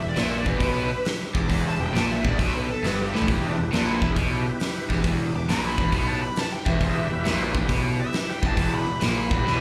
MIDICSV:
0, 0, Header, 1, 6, 480
1, 0, Start_track
1, 0, Key_signature, 1, "minor"
1, 0, Tempo, 442804
1, 1628, Time_signature, 4, 2, 24, 8
1, 10413, End_track
2, 0, Start_track
2, 0, Title_t, "Lead electric guitar"
2, 0, Program_c, 0, 29
2, 100, Note_on_c, 0, 74, 81
2, 247, Note_off_c, 0, 74, 0
2, 247, Note_on_c, 0, 76, 94
2, 373, Note_off_c, 0, 76, 0
2, 412, Note_on_c, 0, 74, 96
2, 535, Note_off_c, 0, 74, 0
2, 535, Note_on_c, 0, 71, 86
2, 677, Note_off_c, 0, 71, 0
2, 708, Note_on_c, 0, 71, 98
2, 1154, Note_off_c, 0, 71, 0
2, 1481, Note_on_c, 0, 86, 107
2, 1785, Note_off_c, 0, 86, 0
2, 1821, Note_on_c, 0, 81, 94
2, 1952, Note_off_c, 0, 81, 0
2, 1957, Note_on_c, 0, 79, 101
2, 2108, Note_off_c, 0, 79, 0
2, 2152, Note_on_c, 0, 81, 93
2, 2286, Note_off_c, 0, 81, 0
2, 2293, Note_on_c, 0, 76, 91
2, 2436, Note_off_c, 0, 76, 0
2, 2446, Note_on_c, 0, 74, 87
2, 2589, Note_off_c, 0, 74, 0
2, 2589, Note_on_c, 0, 76, 95
2, 2744, Note_off_c, 0, 76, 0
2, 2764, Note_on_c, 0, 71, 96
2, 2912, Note_off_c, 0, 71, 0
2, 2934, Note_on_c, 0, 69, 102
2, 3088, Note_off_c, 0, 69, 0
2, 3088, Note_on_c, 0, 71, 84
2, 3234, Note_off_c, 0, 71, 0
2, 3264, Note_on_c, 0, 67, 90
2, 3419, Note_off_c, 0, 67, 0
2, 3419, Note_on_c, 0, 64, 94
2, 3560, Note_off_c, 0, 64, 0
2, 3597, Note_on_c, 0, 67, 100
2, 3729, Note_off_c, 0, 67, 0
2, 3745, Note_on_c, 0, 62, 91
2, 3883, Note_off_c, 0, 62, 0
2, 4058, Note_on_c, 0, 62, 100
2, 4191, Note_on_c, 0, 64, 107
2, 4199, Note_off_c, 0, 62, 0
2, 4449, Note_off_c, 0, 64, 0
2, 5812, Note_on_c, 0, 86, 99
2, 5956, Note_off_c, 0, 86, 0
2, 5961, Note_on_c, 0, 83, 102
2, 6575, Note_off_c, 0, 83, 0
2, 6579, Note_on_c, 0, 81, 97
2, 6738, Note_off_c, 0, 81, 0
2, 6742, Note_on_c, 0, 83, 94
2, 6923, Note_off_c, 0, 83, 0
2, 6923, Note_on_c, 0, 81, 94
2, 7071, Note_off_c, 0, 81, 0
2, 7072, Note_on_c, 0, 79, 89
2, 7224, Note_off_c, 0, 79, 0
2, 7224, Note_on_c, 0, 76, 106
2, 8156, Note_off_c, 0, 76, 0
2, 8672, Note_on_c, 0, 76, 118
2, 8979, Note_off_c, 0, 76, 0
2, 9002, Note_on_c, 0, 79, 84
2, 9149, Note_off_c, 0, 79, 0
2, 9168, Note_on_c, 0, 81, 92
2, 9468, Note_off_c, 0, 81, 0
2, 9479, Note_on_c, 0, 83, 95
2, 9783, Note_off_c, 0, 83, 0
2, 9821, Note_on_c, 0, 86, 92
2, 9942, Note_off_c, 0, 86, 0
2, 9946, Note_on_c, 0, 83, 99
2, 10413, Note_off_c, 0, 83, 0
2, 10413, End_track
3, 0, Start_track
3, 0, Title_t, "Tonewheel organ"
3, 0, Program_c, 1, 16
3, 0, Note_on_c, 1, 67, 75
3, 0, Note_on_c, 1, 71, 72
3, 0, Note_on_c, 1, 76, 71
3, 3508, Note_off_c, 1, 71, 0
3, 3510, Note_off_c, 1, 76, 0
3, 3513, Note_off_c, 1, 67, 0
3, 3559, Note_on_c, 1, 71, 68
3, 3563, Note_on_c, 1, 67, 75
3, 3572, Note_on_c, 1, 64, 75
3, 7355, Note_off_c, 1, 71, 0
3, 7359, Note_off_c, 1, 67, 0
3, 7361, Note_off_c, 1, 64, 0
3, 7382, Note_on_c, 1, 65, 68
3, 7384, Note_on_c, 1, 72, 66
3, 7388, Note_on_c, 1, 68, 68
3, 7511, Note_on_c, 1, 71, 83
3, 7520, Note_on_c, 1, 64, 80
3, 7520, Note_on_c, 1, 67, 85
3, 7545, Note_off_c, 1, 65, 0
3, 7546, Note_off_c, 1, 72, 0
3, 7548, Note_off_c, 1, 68, 0
3, 10413, Note_off_c, 1, 64, 0
3, 10413, Note_off_c, 1, 67, 0
3, 10413, Note_off_c, 1, 71, 0
3, 10413, End_track
4, 0, Start_track
4, 0, Title_t, "Overdriven electric guitar"
4, 0, Program_c, 2, 29
4, 19, Note_on_c, 2, 40, 75
4, 150, Note_off_c, 2, 40, 0
4, 165, Note_on_c, 2, 46, 109
4, 490, Note_off_c, 2, 46, 0
4, 493, Note_on_c, 2, 40, 109
4, 643, Note_on_c, 2, 47, 114
4, 655, Note_off_c, 2, 40, 0
4, 969, Note_off_c, 2, 47, 0
4, 1460, Note_on_c, 2, 40, 97
4, 1601, Note_off_c, 2, 40, 0
4, 1614, Note_on_c, 2, 40, 108
4, 1934, Note_off_c, 2, 40, 0
4, 1955, Note_on_c, 2, 40, 70
4, 2079, Note_off_c, 2, 40, 0
4, 2094, Note_on_c, 2, 46, 101
4, 2414, Note_off_c, 2, 46, 0
4, 2431, Note_on_c, 2, 40, 102
4, 2584, Note_off_c, 2, 40, 0
4, 2595, Note_on_c, 2, 47, 109
4, 2905, Note_off_c, 2, 47, 0
4, 3074, Note_on_c, 2, 43, 102
4, 3384, Note_off_c, 2, 43, 0
4, 3400, Note_on_c, 2, 45, 102
4, 3548, Note_off_c, 2, 45, 0
4, 3549, Note_on_c, 2, 40, 102
4, 3862, Note_off_c, 2, 40, 0
4, 3883, Note_on_c, 2, 40, 75
4, 4003, Note_off_c, 2, 40, 0
4, 4035, Note_on_c, 2, 46, 106
4, 4345, Note_off_c, 2, 46, 0
4, 4358, Note_on_c, 2, 40, 108
4, 4508, Note_off_c, 2, 40, 0
4, 4517, Note_on_c, 2, 47, 100
4, 4826, Note_off_c, 2, 47, 0
4, 5314, Note_on_c, 2, 40, 94
4, 5457, Note_off_c, 2, 40, 0
4, 5470, Note_on_c, 2, 40, 106
4, 5782, Note_off_c, 2, 40, 0
4, 5793, Note_on_c, 2, 40, 75
4, 5918, Note_off_c, 2, 40, 0
4, 5955, Note_on_c, 2, 46, 110
4, 6265, Note_off_c, 2, 46, 0
4, 6279, Note_on_c, 2, 40, 111
4, 6428, Note_off_c, 2, 40, 0
4, 6430, Note_on_c, 2, 47, 113
4, 6742, Note_off_c, 2, 47, 0
4, 7224, Note_on_c, 2, 40, 112
4, 7364, Note_off_c, 2, 40, 0
4, 7377, Note_on_c, 2, 40, 108
4, 7683, Note_off_c, 2, 40, 0
4, 7696, Note_on_c, 2, 40, 76
4, 7829, Note_off_c, 2, 40, 0
4, 7857, Note_on_c, 2, 46, 119
4, 8175, Note_off_c, 2, 46, 0
4, 8181, Note_on_c, 2, 40, 103
4, 8335, Note_on_c, 2, 47, 105
4, 8338, Note_off_c, 2, 40, 0
4, 8654, Note_off_c, 2, 47, 0
4, 9144, Note_on_c, 2, 40, 104
4, 9272, Note_off_c, 2, 40, 0
4, 9285, Note_on_c, 2, 40, 104
4, 9603, Note_off_c, 2, 40, 0
4, 9616, Note_on_c, 2, 40, 81
4, 9748, Note_off_c, 2, 40, 0
4, 9769, Note_on_c, 2, 46, 115
4, 10091, Note_off_c, 2, 46, 0
4, 10095, Note_on_c, 2, 40, 114
4, 10245, Note_on_c, 2, 47, 106
4, 10255, Note_off_c, 2, 40, 0
4, 10413, Note_off_c, 2, 47, 0
4, 10413, End_track
5, 0, Start_track
5, 0, Title_t, "Picked electric bass"
5, 0, Program_c, 3, 34
5, 26, Note_on_c, 3, 28, 84
5, 165, Note_off_c, 3, 28, 0
5, 171, Note_on_c, 3, 34, 86
5, 479, Note_off_c, 3, 34, 0
5, 497, Note_on_c, 3, 28, 101
5, 642, Note_off_c, 3, 28, 0
5, 649, Note_on_c, 3, 35, 93
5, 958, Note_off_c, 3, 35, 0
5, 1461, Note_on_c, 3, 28, 103
5, 1607, Note_off_c, 3, 28, 0
5, 1613, Note_on_c, 3, 28, 88
5, 1921, Note_off_c, 3, 28, 0
5, 1952, Note_on_c, 3, 28, 78
5, 2085, Note_off_c, 3, 28, 0
5, 2092, Note_on_c, 3, 34, 87
5, 2400, Note_off_c, 3, 34, 0
5, 2427, Note_on_c, 3, 28, 84
5, 2575, Note_off_c, 3, 28, 0
5, 2590, Note_on_c, 3, 35, 94
5, 2889, Note_off_c, 3, 35, 0
5, 3070, Note_on_c, 3, 31, 99
5, 3370, Note_off_c, 3, 31, 0
5, 3401, Note_on_c, 3, 33, 94
5, 3543, Note_off_c, 3, 33, 0
5, 3558, Note_on_c, 3, 28, 93
5, 3854, Note_off_c, 3, 28, 0
5, 3880, Note_on_c, 3, 28, 71
5, 4022, Note_off_c, 3, 28, 0
5, 4039, Note_on_c, 3, 34, 98
5, 4335, Note_off_c, 3, 34, 0
5, 4353, Note_on_c, 3, 28, 93
5, 4499, Note_off_c, 3, 28, 0
5, 4513, Note_on_c, 3, 35, 102
5, 4811, Note_off_c, 3, 35, 0
5, 5303, Note_on_c, 3, 28, 98
5, 5453, Note_off_c, 3, 28, 0
5, 5463, Note_on_c, 3, 28, 95
5, 5766, Note_off_c, 3, 28, 0
5, 5786, Note_on_c, 3, 28, 70
5, 5935, Note_off_c, 3, 28, 0
5, 5951, Note_on_c, 3, 34, 83
5, 6250, Note_off_c, 3, 34, 0
5, 6261, Note_on_c, 3, 28, 94
5, 6412, Note_off_c, 3, 28, 0
5, 6424, Note_on_c, 3, 35, 105
5, 6726, Note_off_c, 3, 35, 0
5, 7218, Note_on_c, 3, 28, 89
5, 7370, Note_off_c, 3, 28, 0
5, 7377, Note_on_c, 3, 28, 106
5, 7682, Note_off_c, 3, 28, 0
5, 7703, Note_on_c, 3, 28, 79
5, 7846, Note_off_c, 3, 28, 0
5, 7852, Note_on_c, 3, 34, 97
5, 8159, Note_off_c, 3, 34, 0
5, 8171, Note_on_c, 3, 28, 96
5, 8326, Note_off_c, 3, 28, 0
5, 8338, Note_on_c, 3, 35, 106
5, 8642, Note_off_c, 3, 35, 0
5, 9134, Note_on_c, 3, 28, 98
5, 9282, Note_off_c, 3, 28, 0
5, 9288, Note_on_c, 3, 28, 96
5, 9597, Note_off_c, 3, 28, 0
5, 9615, Note_on_c, 3, 28, 77
5, 9765, Note_off_c, 3, 28, 0
5, 9771, Note_on_c, 3, 34, 95
5, 10078, Note_off_c, 3, 34, 0
5, 10091, Note_on_c, 3, 28, 93
5, 10246, Note_off_c, 3, 28, 0
5, 10264, Note_on_c, 3, 35, 99
5, 10413, Note_off_c, 3, 35, 0
5, 10413, End_track
6, 0, Start_track
6, 0, Title_t, "Drums"
6, 172, Note_on_c, 9, 46, 58
6, 187, Note_on_c, 9, 38, 115
6, 281, Note_off_c, 9, 46, 0
6, 296, Note_off_c, 9, 38, 0
6, 499, Note_on_c, 9, 36, 99
6, 607, Note_off_c, 9, 36, 0
6, 655, Note_on_c, 9, 36, 102
6, 656, Note_on_c, 9, 46, 59
6, 763, Note_off_c, 9, 36, 0
6, 765, Note_off_c, 9, 46, 0
6, 1138, Note_on_c, 9, 46, 59
6, 1154, Note_on_c, 9, 38, 112
6, 1247, Note_off_c, 9, 46, 0
6, 1262, Note_off_c, 9, 38, 0
6, 1461, Note_on_c, 9, 36, 102
6, 1570, Note_off_c, 9, 36, 0
6, 1622, Note_on_c, 9, 36, 97
6, 1631, Note_on_c, 9, 46, 61
6, 1730, Note_off_c, 9, 36, 0
6, 1740, Note_off_c, 9, 46, 0
6, 2116, Note_on_c, 9, 46, 62
6, 2131, Note_on_c, 9, 38, 122
6, 2224, Note_off_c, 9, 46, 0
6, 2239, Note_off_c, 9, 38, 0
6, 2434, Note_on_c, 9, 36, 104
6, 2543, Note_off_c, 9, 36, 0
6, 2592, Note_on_c, 9, 36, 107
6, 2601, Note_on_c, 9, 46, 55
6, 2700, Note_off_c, 9, 36, 0
6, 2710, Note_off_c, 9, 46, 0
6, 3081, Note_on_c, 9, 46, 55
6, 3096, Note_on_c, 9, 38, 102
6, 3189, Note_off_c, 9, 46, 0
6, 3204, Note_off_c, 9, 38, 0
6, 3418, Note_on_c, 9, 38, 65
6, 3489, Note_on_c, 9, 43, 89
6, 3527, Note_off_c, 9, 38, 0
6, 3558, Note_on_c, 9, 36, 104
6, 3567, Note_on_c, 9, 46, 50
6, 3597, Note_off_c, 9, 43, 0
6, 3667, Note_off_c, 9, 36, 0
6, 3675, Note_off_c, 9, 46, 0
6, 4040, Note_on_c, 9, 46, 54
6, 4055, Note_on_c, 9, 38, 117
6, 4149, Note_off_c, 9, 46, 0
6, 4164, Note_off_c, 9, 38, 0
6, 4356, Note_on_c, 9, 36, 97
6, 4465, Note_off_c, 9, 36, 0
6, 4514, Note_on_c, 9, 36, 110
6, 4520, Note_on_c, 9, 46, 57
6, 4623, Note_off_c, 9, 36, 0
6, 4629, Note_off_c, 9, 46, 0
6, 4985, Note_on_c, 9, 46, 65
6, 5001, Note_on_c, 9, 38, 113
6, 5094, Note_off_c, 9, 46, 0
6, 5109, Note_off_c, 9, 38, 0
6, 5311, Note_on_c, 9, 36, 90
6, 5332, Note_on_c, 9, 38, 33
6, 5419, Note_off_c, 9, 36, 0
6, 5440, Note_off_c, 9, 38, 0
6, 5466, Note_on_c, 9, 36, 101
6, 5469, Note_on_c, 9, 46, 60
6, 5574, Note_off_c, 9, 36, 0
6, 5578, Note_off_c, 9, 46, 0
6, 5951, Note_on_c, 9, 46, 67
6, 5966, Note_on_c, 9, 38, 112
6, 6059, Note_off_c, 9, 46, 0
6, 6074, Note_off_c, 9, 38, 0
6, 6266, Note_on_c, 9, 36, 97
6, 6374, Note_off_c, 9, 36, 0
6, 6422, Note_on_c, 9, 36, 104
6, 6428, Note_on_c, 9, 46, 60
6, 6530, Note_off_c, 9, 36, 0
6, 6536, Note_off_c, 9, 46, 0
6, 6894, Note_on_c, 9, 46, 53
6, 6910, Note_on_c, 9, 38, 117
6, 7003, Note_off_c, 9, 46, 0
6, 7018, Note_off_c, 9, 38, 0
6, 7222, Note_on_c, 9, 36, 99
6, 7330, Note_off_c, 9, 36, 0
6, 7379, Note_on_c, 9, 36, 102
6, 7385, Note_on_c, 9, 46, 55
6, 7488, Note_off_c, 9, 36, 0
6, 7493, Note_off_c, 9, 46, 0
6, 7861, Note_on_c, 9, 46, 54
6, 7876, Note_on_c, 9, 38, 116
6, 7969, Note_off_c, 9, 46, 0
6, 7985, Note_off_c, 9, 38, 0
6, 8180, Note_on_c, 9, 36, 102
6, 8288, Note_off_c, 9, 36, 0
6, 8337, Note_on_c, 9, 36, 101
6, 8339, Note_on_c, 9, 46, 59
6, 8446, Note_off_c, 9, 36, 0
6, 8448, Note_off_c, 9, 46, 0
6, 8812, Note_on_c, 9, 46, 60
6, 8827, Note_on_c, 9, 38, 112
6, 8921, Note_off_c, 9, 46, 0
6, 8936, Note_off_c, 9, 38, 0
6, 9136, Note_on_c, 9, 36, 99
6, 9244, Note_off_c, 9, 36, 0
6, 9292, Note_on_c, 9, 36, 101
6, 9292, Note_on_c, 9, 46, 59
6, 9400, Note_off_c, 9, 36, 0
6, 9400, Note_off_c, 9, 46, 0
6, 9766, Note_on_c, 9, 46, 64
6, 9781, Note_on_c, 9, 38, 125
6, 9874, Note_off_c, 9, 46, 0
6, 9889, Note_off_c, 9, 38, 0
6, 10093, Note_on_c, 9, 36, 113
6, 10201, Note_off_c, 9, 36, 0
6, 10266, Note_on_c, 9, 38, 60
6, 10374, Note_off_c, 9, 38, 0
6, 10413, End_track
0, 0, End_of_file